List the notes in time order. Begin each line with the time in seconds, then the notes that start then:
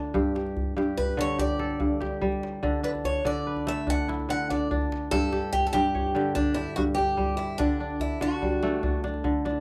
Already playing: D3 A3 D4 E4
0.14 G2 G4, djembe tone, djembe bass
0.35 G4, djembe slap
0.47 djembe tone
0.57 djembe bass
0.68 djembe slap
0.77 G2 G4, djembe slap, djembe tone
0.97 B4, djembe bass
1.09 djembe slap, djembe tone
1.17 D3 C#5, djembe slap
1.38 G4 D5, djembe tone, djembe bass
1.59 A4, djembe slap
1.70 djembe tone
1.80 G2, djembe bass
2.00 G4, djembe slap, djembe tone
2.12 djembe slap
2.21 G3, djembe bass
2.32 djembe tone
2.43 djembe slap
2.63 D3 D4, djembe tone, djembe bass
2.83 D4 B4, djembe slap
2.95 djembe slap, djembe tone
3.04 C#5, djembe bass
3.25 D3 D4 D5, djembe slap, djembe tone
3.47 B4
3.57 djembe tone
3.67 A3 E5, djembe slap
3.78 djembe slap
3.87 D4 F#5, djembe tone, djembe bass
3.98 djembe slap
4.08 E4, djembe slap
4.20 djembe tone
4.29 D3 F#5
4.50 D4 D5, djembe slap, djembe tone
4.71 D4, djembe bass
4.81 djembe tone
4.92 djembe slap
5.11 G2 G4 A4, djembe tone, djembe bass
5.32 G4, djembe slap
5.42 djembe tone
5.53 G4, djembe bass
5.64 A4, djembe slap
5.73 G2 G4, djembe slap, djembe tone
5.95 C#5, djembe bass
6.06 djembe slap, djembe tone
6.15 D3 G4, djembe slap
6.35 D4 G4, djembe tone, djembe bass
6.54 E4 G4, djembe slap
6.68 djembe tone
6.76 G2 F#4, djembe bass
6.95 G4, djembe slap, djembe tone
7.08 djembe slap
7.17 G3, djembe bass
7.29 djembe tone
7.37 E4, djembe slap
7.58 D3 D4, djembe tone, djembe bass
7.80 D4
7.90 djembe tone
8.00 E4, djembe bass
8.21 D3 D4 F#4, djembe slap, djembe tone
8.42 G3, djembe bass
8.53 djembe slap, djembe tone
8.63 A3 D4, djembe slap
8.83 D4, djembe tone, djembe bass
9.04 D4, djembe slap
9.14 djembe tone
9.24 D3, djembe bass
9.45 D4, djembe slap, djembe tone
9.56 djembe slap